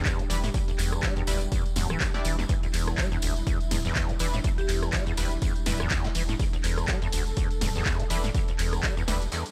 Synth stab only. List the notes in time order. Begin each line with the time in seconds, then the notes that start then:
0.30 G3 D4 E4 B4
1.27 G3 D4 E4 B4
2.14 G3 D4 E4 D5
4.20 G3 D4 E4 B4
5.18 G3 D4 E4 B4
5.66 G3 D4 E4 B4
8.10 G3 D4 E4 B4
9.08 G3 D4 E4 B4